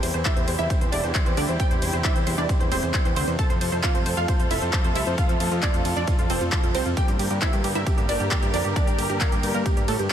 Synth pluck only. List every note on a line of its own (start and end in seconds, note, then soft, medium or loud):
0.03 0.11 C5 medium
0.14 0.22 C5 medium
0.25 0.33 E4 medium
0.25 0.33 E5 medium
0.36 0.44 C5 medium
0.48 0.55 C5 medium
0.59 0.66 E4 medium
0.59 0.66 E5 medium
0.70 0.78 C5 medium
0.81 0.89 C5 medium
0.92 1.00 D4 medium
0.92 1.00 D5 medium
1.04 1.11 C5 medium
1.15 1.22 C5 medium
1.26 1.34 C5 medium
1.37 1.45 D4 medium
1.37 1.45 D5 loud
1.49 1.56 C5 medium
1.60 1.67 G4 medium
1.60 1.67 G5 loud
1.71 1.79 C5 medium
1.82 1.90 C5 medium
1.93 2.01 C5 medium
2.05 2.12 E4 medium
2.05 2.12 E5 loud
2.16 2.23 C5 medium
2.27 2.34 C5 medium
2.38 2.46 D4 medium
2.38 2.46 D5 loud
2.49 2.57 C5 medium
2.60 2.68 C5 medium
2.72 2.79 C4 medium
2.72 2.79 C5 loud
2.83 2.90 C5 medium
2.94 3.02 C5 medium
3.05 3.13 C5 medium
3.16 3.24 C4 medium
3.16 3.24 C5 medium
3.28 3.35 C5 medium
3.39 3.46 A4 medium
3.39 3.46 A5 loud
3.50 3.58 C5 medium
3.61 3.69 C5 medium
3.72 3.80 C5 medium
3.83 3.91 F4 medium
3.83 3.91 F5 medium
3.95 4.02 C5 medium
4.06 4.14 C5 medium
4.17 4.25 F4 medium
4.17 4.25 F5 loud
4.28 4.36 C5 medium
4.40 4.47 C5 medium
4.51 4.58 E4 medium
4.51 4.58 E5 loud
4.62 4.70 C5 medium
4.73 4.81 C5 medium
4.85 4.92 C5 medium
4.96 5.03 E4 medium
4.96 5.03 E5 medium
5.07 5.14 C5 medium
5.18 5.26 F4 medium
5.18 5.26 F5 loud
5.29 5.37 F4 medium
5.41 5.48 F4 medium
5.52 5.59 F4 medium
5.63 5.70 D4 medium
5.63 5.70 D5 medium
5.74 5.82 F4 medium
5.85 5.93 F4 medium
5.97 6.04 D4 medium
5.97 6.04 D5 medium
6.08 6.15 F4 medium
6.19 6.26 F4 medium
6.30 6.38 C4 medium
6.30 6.38 C5 medium
6.41 6.49 F4 medium
6.52 6.60 F4 medium
6.64 6.71 F4 medium
6.75 6.82 C4 medium
6.75 6.82 C5 medium
6.86 6.93 F4 medium
6.97 7.05 G4 medium
6.97 7.05 G5 loud
7.08 7.16 G4 medium
7.19 7.27 G4 medium
7.31 7.38 G4 medium
7.42 7.49 E4 medium
7.42 7.49 E5 loud
7.53 7.61 G4 medium
7.64 7.72 G4 medium
7.75 7.83 E4 medium
7.75 7.83 E5 medium
7.86 7.94 G4 medium
7.98 8.05 G4 medium
8.09 8.17 D4 medium
8.09 8.17 D5 loud
8.20 8.28 G4 medium
8.31 8.39 G4 medium
8.42 8.50 G4 medium
8.54 8.61 D4 medium
8.54 8.61 D5 medium
8.65 8.72 G4 medium
8.76 8.84 D4 medium
8.76 8.84 D5 loud
8.87 8.95 G4 medium
8.98 9.06 G4 medium
9.10 9.17 G4 medium
9.21 9.28 A#3 medium
9.21 9.28 A#4 medium
9.32 9.40 G4 medium
9.43 9.51 G4 medium
9.54 9.62 A#3 medium
9.54 9.62 A#4 medium
9.66 9.73 G4 medium
9.77 9.85 G4 medium
9.88 9.96 A3 medium
9.88 9.96 A4 loud
9.99 10.07 G4 medium